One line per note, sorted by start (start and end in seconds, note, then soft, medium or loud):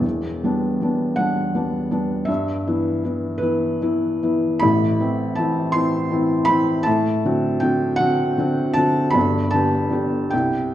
0.00 0.40 E1 medium
0.00 0.39 E2 medium
0.44 0.77 G3 soft
0.44 0.77 B3 soft
0.44 0.78 D4 soft
0.82 1.14 G3 soft
0.82 1.15 B3 soft
0.82 1.15 D4 soft
1.16 1.51 G3 soft
1.16 1.51 B3 soft
1.16 1.51 D4 soft
1.16 2.28 F#5 medium
1.55 1.87 G3 soft
1.55 1.87 B3 soft
1.55 1.88 D4 soft
1.91 2.25 G3 soft
1.91 2.25 B3 soft
1.91 2.25 D4 medium
2.25 2.65 G2 medium
2.25 3.40 E5 medium
2.67 3.01 E3 soft
2.67 3.00 B3 soft
2.67 3.01 E4 medium
3.04 3.38 E3 soft
3.04 3.38 B3 soft
3.04 3.38 E4 soft
3.38 3.77 E3 soft
3.38 3.77 B3 medium
3.38 4.60 B4 medium
3.42 3.77 E4 soft
3.81 4.18 E3 medium
3.81 4.19 B3 medium
3.81 4.19 E4 medium
4.23 4.59 E3 medium
4.23 4.59 B3 soft
4.23 4.59 E4 medium
4.59 4.99 A1 medium
4.59 4.99 A2 medium
4.59 5.36 B5 loud
5.00 5.33 E3 soft
5.00 5.34 C4 soft
5.00 5.34 E4 medium
5.35 5.71 E3 soft
5.35 5.71 C4 soft
5.35 5.71 E4 medium
5.35 5.73 A5 medium
5.72 6.07 E3 soft
5.72 6.08 C4 medium
5.72 6.08 E4 medium
5.72 6.47 C6 loud
6.11 6.45 E3 soft
6.11 6.45 C4 soft
6.11 6.45 E4 medium
6.45 6.82 E3 medium
6.45 6.83 C4 medium
6.45 6.85 B5 loud
6.50 6.83 E4 medium
6.83 7.24 A2 medium
6.83 7.62 A5 loud
7.25 7.59 D3 medium
7.25 7.60 C4 medium
7.25 7.60 F#4 medium
7.60 7.97 D3 medium
7.60 7.97 C4 medium
7.60 8.00 G5 medium
7.64 7.98 F#4 medium
7.96 8.35 D3 medium
7.96 8.75 F#5 loud
8.00 8.35 C4 medium
8.00 8.35 F#4 medium
8.38 8.73 D3 medium
8.38 8.74 C4 medium
8.38 8.74 F#4 medium
8.74 9.11 D3 medium
8.74 9.11 C4 medium
8.74 9.13 A5 loud
8.78 9.12 F#4 medium
9.10 9.51 G1 medium
9.10 9.52 G2 medium
9.10 9.51 B5 loud
9.51 9.89 D3 medium
9.51 9.89 B3 medium
9.51 9.89 G4 medium
9.51 10.31 A5 medium
9.90 10.27 D3 soft
9.90 10.28 B3 soft
9.90 10.28 G4 soft
10.30 10.73 C2 medium
10.30 10.74 G5 medium